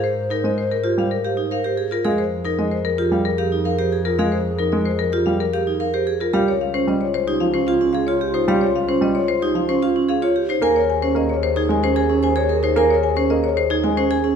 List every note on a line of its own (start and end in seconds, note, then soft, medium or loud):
0.00 1.90 G#2 medium
0.00 1.75 C5 medium
0.00 0.21 C5 medium
0.30 0.48 D#4 medium
0.30 0.48 A#4 medium
0.44 0.61 G#3 medium
0.44 0.62 D#5 medium
0.58 0.75 C5 medium
0.71 0.88 A#4 medium
0.84 1.01 F4 medium
0.84 1.02 G4 medium
0.98 1.15 G3 medium
0.98 1.15 F5 medium
1.11 1.29 A#4 medium
1.24 1.42 G4 medium
1.24 1.42 F5 medium
1.37 1.55 D#4 medium
1.51 1.69 A#4 medium
1.51 1.69 F5 medium
1.64 1.82 G4 medium
1.64 1.82 C5 medium
1.78 1.95 G#4 medium
1.91 2.09 F4 medium
1.91 2.09 A#4 medium
2.05 6.19 F2 medium
2.05 2.22 G#3 medium
2.05 6.16 G#4 medium
2.05 2.22 G#4 medium
2.05 2.22 F5 medium
2.18 2.36 C5 medium
2.44 2.62 D#4 medium
2.44 2.62 A#4 medium
2.59 2.76 G#3 medium
2.59 2.76 D#5 medium
2.72 2.89 C5 medium
2.85 3.02 A#4 medium
2.98 3.16 F4 medium
2.98 3.16 G4 medium
3.12 3.29 G3 medium
3.12 3.29 F5 medium
3.25 3.43 A#4 medium
3.38 3.56 G4 medium
3.38 3.56 F5 medium
3.52 3.70 D#4 medium
3.65 3.83 A#4 medium
3.65 3.83 F5 medium
3.79 3.96 G4 medium
3.79 3.96 C5 medium
3.92 4.10 G#4 medium
4.05 4.23 F4 medium
4.05 4.23 A#4 medium
4.19 4.36 G#3 medium
4.19 4.37 G#4 medium
4.19 4.36 F5 medium
4.32 4.50 C5 medium
4.58 4.77 D#4 medium
4.58 4.76 A#4 medium
4.72 4.90 G#3 medium
4.72 4.90 D#5 medium
4.86 5.03 C5 medium
4.99 5.17 A#4 medium
5.12 5.30 F4 medium
5.12 5.30 G4 medium
5.26 5.44 G3 medium
5.26 5.43 F5 medium
5.40 5.57 A#4 medium
5.53 5.71 G4 medium
5.53 5.71 F5 medium
5.67 5.84 D#4 medium
5.80 5.97 A#4 medium
5.80 5.97 F5 medium
5.94 6.11 G4 medium
5.94 6.11 C5 medium
6.07 6.24 G#4 medium
6.21 6.38 F4 medium
6.21 6.38 A#4 medium
6.33 10.47 C#2 medium
6.33 6.51 G3 medium
6.33 10.32 F4 medium
6.33 6.51 G4 medium
6.33 6.51 F5 medium
6.48 6.65 C#5 medium
6.61 6.78 F5 medium
6.74 6.91 C#4 medium
6.74 6.91 C5 medium
6.87 7.04 G3 medium
6.87 7.05 D#5 medium
7.01 7.18 C#5 medium
7.14 7.31 C5 medium
7.27 7.45 D#4 medium
7.27 7.45 G4 medium
7.40 7.58 F3 medium
7.40 7.58 F5 medium
7.54 7.71 C#4 medium
7.54 7.71 C5 medium
7.67 7.85 F4 medium
7.67 7.85 F5 medium
7.81 7.98 C#4 medium
7.93 8.12 G#4 medium
7.93 8.11 F5 medium
8.07 8.25 F4 medium
8.07 8.25 C#5 medium
8.21 8.38 G4 medium
8.34 8.52 D#4 medium
8.34 8.52 C5 medium
8.48 8.65 G3 medium
8.48 8.65 G4 medium
8.48 8.65 F5 medium
8.61 8.79 C#5 medium
8.76 8.92 F5 medium
8.89 9.05 C#4 medium
8.89 9.06 C5 medium
9.01 9.19 G3 medium
9.01 9.19 D#5 medium
9.15 9.32 C#5 medium
9.28 9.46 C5 medium
9.42 9.59 D#4 medium
9.42 9.59 G4 medium
9.55 9.72 F3 medium
9.55 9.72 F5 medium
9.69 9.86 C#4 medium
9.69 9.86 C5 medium
9.82 9.99 F4 medium
9.82 9.99 F5 medium
9.96 10.13 C#4 medium
10.09 10.26 G#4 medium
10.09 10.26 F5 medium
10.22 10.39 F4 medium
10.22 10.40 C#5 medium
10.36 10.53 G4 medium
10.49 10.66 D#4 medium
10.49 10.66 C5 medium
10.62 14.36 D#2 medium
10.62 10.79 A#3 medium
10.62 14.36 G#4 medium
10.62 10.79 A#4 medium
10.62 10.80 G#5 medium
10.76 10.93 C#5 medium
10.90 11.06 G#5 medium
11.02 11.20 C#4 medium
11.02 11.20 C5 medium
11.15 11.33 A#3 medium
11.15 11.33 D#5 medium
11.29 11.46 C#5 medium
11.43 11.60 C5 medium
11.56 11.73 D#4 medium
11.56 11.74 G#4 medium
11.69 11.86 G#3 medium
11.69 11.87 G#5 medium
11.83 12.00 C#4 medium
11.83 12.00 C5 medium
11.96 12.13 G#4 medium
11.96 12.14 G#5 medium
12.09 12.27 C#4 medium
12.23 12.40 C5 medium
12.23 12.40 G#5 medium
12.36 12.53 G#4 medium
12.36 12.54 C#5 medium
12.49 12.67 A#4 medium
12.63 12.80 D#4 medium
12.63 12.81 C5 medium
12.76 12.94 A#3 medium
12.76 12.94 A#4 medium
12.76 12.94 G#5 medium
12.90 13.07 C#5 medium
13.03 13.21 G#5 medium
13.16 13.34 C#4 medium
13.16 13.34 C5 medium
13.30 13.47 A#3 medium
13.30 13.47 D#5 medium
13.44 13.61 C#5 medium
13.57 13.74 C5 medium
13.70 13.87 D#4 medium
13.70 13.88 G#4 medium
13.84 14.01 G#3 medium
13.84 14.01 G#5 medium
13.97 14.14 C#4 medium
13.97 14.14 C5 medium
14.11 14.28 G#4 medium
14.11 14.28 G#5 medium
14.24 14.36 C#4 medium